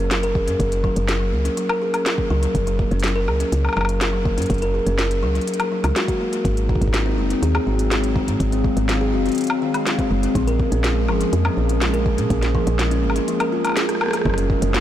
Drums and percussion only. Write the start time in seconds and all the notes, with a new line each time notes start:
0.11 snare, closed hi-hat
0.23 closed hi-hat
0.35 kick
0.48 closed hi-hat
0.60 kick, closed hi-hat
0.72 closed hi-hat
0.84 kick
0.96 closed hi-hat
1.09 snare, closed hi-hat
1.45 closed hi-hat
1.57 closed hi-hat
1.69 high woodblock
1.94 closed hi-hat, high woodblock
2.06 snare, closed hi-hat
2.18 kick
2.43 closed hi-hat
2.55 kick, closed hi-hat
2.67 closed hi-hat
2.79 kick
2.91 closed hi-hat
3.00 closed hi-hat
3.04 snare, closed hi-hat
3.08 closed hi-hat
3.28 high woodblock
3.40 closed hi-hat
3.52 closed hi-hat
3.65 high woodblock
3.69 high woodblock
3.73 high woodblock
3.77 high woodblock
3.81 high woodblock
3.85 high woodblock
3.89 closed hi-hat
4.01 snare, closed hi-hat
4.25 kick
4.38 closed hi-hat
4.42 closed hi-hat
4.46 kick, closed hi-hat
4.50 closed hi-hat
4.54 closed hi-hat
4.58 closed hi-hat
4.62 closed hi-hat
4.87 closed hi-hat
4.99 snare, closed hi-hat
5.11 closed hi-hat
5.35 closed hi-hat
5.41 closed hi-hat
5.47 closed hi-hat
5.54 closed hi-hat
5.60 closed hi-hat, high woodblock
5.84 closed hi-hat, high woodblock
5.96 snare, closed hi-hat
6.08 kick, closed hi-hat
6.33 closed hi-hat
6.45 kick, closed hi-hat
6.57 closed hi-hat
6.69 kick
6.75 kick
6.81 kick, closed hi-hat
6.88 kick
6.94 snare, closed hi-hat
7.30 closed hi-hat
7.43 closed hi-hat
7.55 high woodblock
7.79 closed hi-hat
7.91 snare, closed hi-hat
8.04 closed hi-hat
8.16 kick
8.28 closed hi-hat
8.40 kick, closed hi-hat
8.52 closed hi-hat
8.64 kick
8.77 closed hi-hat
8.89 snare, closed hi-hat
9.26 closed hi-hat
9.29 closed hi-hat
9.32 closed hi-hat
9.35 closed hi-hat
9.38 closed hi-hat
9.41 closed hi-hat
9.44 closed hi-hat
9.47 closed hi-hat, high woodblock
9.74 closed hi-hat, high woodblock
9.87 snare, closed hi-hat
9.99 kick, closed hi-hat
10.23 closed hi-hat
10.35 kick, closed hi-hat
10.48 closed hi-hat
10.60 kick
10.72 closed hi-hat
10.84 snare, closed hi-hat
11.09 high woodblock
11.21 closed hi-hat
11.33 closed hi-hat
11.45 high woodblock
11.69 closed hi-hat
11.81 snare, closed hi-hat
11.94 closed hi-hat
12.06 kick
12.18 closed hi-hat
12.30 kick, closed hi-hat
12.43 snare, closed hi-hat
12.55 kick
12.67 closed hi-hat
12.79 snare, closed hi-hat
12.91 closed hi-hat
13.10 high woodblock
13.16 closed hi-hat
13.28 closed hi-hat
13.40 closed hi-hat, high woodblock
13.65 closed hi-hat, high woodblock
13.67 high woodblock
13.69 high woodblock
13.72 high woodblock
13.77 snare, closed hi-hat
13.89 cross-stick, closed hi-hat
13.95 cross-stick
14.01 cross-stick, high woodblock
14.04 cross-stick
14.06 cross-stick
14.08 cross-stick
14.11 cross-stick
14.13 cross-stick, closed hi-hat, high woodblock
14.17 cross-stick
14.21 kick, cross-stick
14.26 cross-stick
14.30 cross-stick
14.34 cross-stick
14.38 closed hi-hat
14.50 kick
14.62 closed hi-hat
14.74 snare